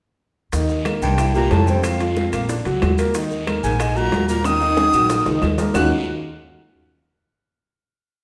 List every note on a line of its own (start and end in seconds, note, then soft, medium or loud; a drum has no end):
0.52 0.99 D#2 medium
0.52 0.80 D#3 medium
0.52 0.80 D#4 medium
0.52 high bongo medium
0.52 high conga soft
0.52 high timbale medium
0.52 long guiro medium
0.52 maracas medium
0.69 high bongo soft
0.69 high conga soft
0.69 maracas soft
0.85 1.13 A#3 medium
0.85 1.13 A#4 medium
0.85 high bongo medium
0.85 high conga medium
0.85 high timbale medium
0.85 low timbale medium
0.85 short guiro medium
0.85 claves medium
0.85 maracas soft
1.02 1.48 C2 medium
1.02 1.33 G2 medium
1.02 1.33 G5 medium
1.02 short guiro medium
1.02 maracas medium
1.18 1.32 E4 medium
1.18 1.32 E5 medium
1.18 high bongo medium
1.18 high conga soft
1.18 high timbale medium
1.18 long guiro medium
1.18 claves medium
1.18 maracas medium
1.34 1.53 A#2 medium
1.34 1.62 G3 medium
1.34 1.62 G4 medium
1.34 1.53 A#5 medium
1.34 high bongo soft
1.34 high conga soft
1.34 maracas soft
1.51 2.27 F2 medium
1.51 1.69 A2 medium
1.51 1.69 A5 medium
1.51 high bongo soft
1.51 low bongo medium
1.51 high conga medium
1.51 high timbale medium
1.51 low timbale medium
1.51 short guiro medium
1.51 maracas soft
1.67 1.85 G2 medium
1.67 1.95 C4 medium
1.67 1.95 C5 medium
1.67 1.85 G5 medium
1.67 high bongo soft
1.67 high conga medium
1.67 short guiro medium
1.67 maracas medium
1.83 2.49 F2 medium
1.83 2.49 F5 medium
1.83 high bongo medium
1.83 high conga soft
1.83 high timbale medium
1.83 long guiro medium
1.83 claves medium
1.83 maracas medium
2.00 2.27 F4 medium
2.00 2.28 F5 medium
2.00 high bongo soft
2.00 high conga soft
2.00 high timbale medium
2.00 maracas soft
2.16 high bongo medium
2.16 high conga medium
2.16 low timbale medium
2.16 short guiro medium
2.16 maracas soft
2.33 2.63 A#1 medium
2.33 2.47 A#3 medium
2.33 2.47 A#4 medium
2.33 high conga soft
2.33 high timbale medium
2.33 short guiro medium
2.33 claves medium
2.33 maracas medium
2.49 2.63 D4 medium
2.49 2.63 D5 medium
2.49 high bongo medium
2.49 long guiro medium
2.49 maracas medium
2.65 2.81 C#2 medium
2.65 2.93 F#3 medium
2.65 2.93 F#4 medium
2.65 high bongo soft
2.65 high conga soft
2.65 high timbale medium
2.65 maracas soft
2.82 3.58 D#2 medium
2.82 high bongo soft
2.82 low bongo medium
2.82 high conga medium
2.82 high timbale medium
2.82 low timbale medium
2.82 short guiro medium
2.82 claves medium
2.82 maracas soft
2.98 3.12 A#3 medium
2.98 3.12 A#4 medium
2.98 high bongo soft
2.98 high conga medium
2.98 high timbale medium
2.98 short guiro medium
2.98 maracas medium
3.14 3.41 D#3 medium
3.14 3.42 D#4 medium
3.14 high bongo medium
3.14 high conga soft
3.14 high timbale medium
3.14 long guiro medium
3.14 maracas medium
3.31 high bongo soft
3.31 high conga soft
3.31 maracas soft
3.47 3.74 A#3 medium
3.47 3.74 A#4 medium
3.47 high bongo medium
3.47 high conga medium
3.47 high timbale medium
3.47 low timbale medium
3.47 short guiro medium
3.47 claves medium
3.47 maracas soft
3.63 4.09 A#1 medium
3.63 3.98 G#2 medium
3.63 3.98 G#5 medium
3.63 high conga soft
3.63 short guiro medium
3.63 maracas medium
3.80 3.93 D#4 medium
3.80 3.93 D#5 medium
3.80 high bongo medium
3.80 high timbale medium
3.80 long guiro medium
3.80 claves medium
3.80 maracas medium
3.96 4.28 A#2 medium
3.96 4.23 F#3 medium
3.96 4.23 F#4 medium
3.96 4.28 A#5 loud
3.96 high bongo soft
3.96 high conga soft
3.96 maracas soft
4.12 4.88 D#2 medium
4.12 high bongo soft
4.12 low bongo medium
4.12 high conga medium
4.12 high timbale medium
4.12 low timbale medium
4.12 short guiro medium
4.12 maracas soft
4.28 4.47 A#2 medium
4.28 4.55 A#3 medium
4.28 4.56 A#4 medium
4.28 4.47 A#5 medium
4.28 high bongo soft
4.28 high conga medium
4.28 short guiro medium
4.28 maracas medium
4.44 5.42 D#3 medium
4.44 5.43 D#6 loud
4.44 high bongo medium
4.44 high conga soft
4.44 high timbale medium
4.44 long guiro medium
4.44 claves medium
4.44 maracas medium
4.61 4.88 D#4 medium
4.61 4.88 D#5 medium
4.61 high bongo soft
4.61 high conga soft
4.61 maracas soft
4.77 high bongo medium
4.77 high conga medium
4.77 high timbale medium
4.77 short guiro medium
4.77 maracas soft
4.93 5.24 A#1 medium
4.93 5.07 F#3 medium
4.93 5.07 F#4 medium
4.93 high conga soft
4.93 short guiro medium
4.93 claves medium
4.93 maracas medium
5.09 5.23 A#3 medium
5.09 5.23 A#4 medium
5.09 high bongo medium
5.09 high conga soft
5.09 low timbale medium
5.09 long guiro medium
5.09 maracas medium
5.26 5.41 C#2 medium
5.26 5.53 D#3 medium
5.26 5.53 D#4 medium
5.26 high bongo soft
5.26 high conga soft
5.26 low timbale medium
5.26 maracas soft
5.42 5.71 D#2 medium
5.42 high bongo soft
5.42 low bongo medium
5.42 high conga medium
5.42 low timbale medium
5.42 short guiro medium
5.42 claves medium
5.42 maracas soft
5.58 5.72 A#3 medium
5.58 5.72 A#4 medium
5.58 high bongo soft
5.58 high conga medium
5.58 low timbale medium
5.58 short guiro medium
5.58 maracas medium
5.74 5.90 D#2 medium
5.74 5.90 F#2 medium
5.74 5.90 D#3 medium
5.74 5.90 A#3 medium
5.74 5.90 C#4 medium
5.74 5.90 D#4 medium
5.74 5.90 F4 medium
5.74 5.90 F#4 loud
5.74 5.90 F#6 medium
5.74 low bongo medium
5.74 low conga medium
5.74 low timbale medium
5.74 long guiro loud
5.74 claves medium
5.74 maracas medium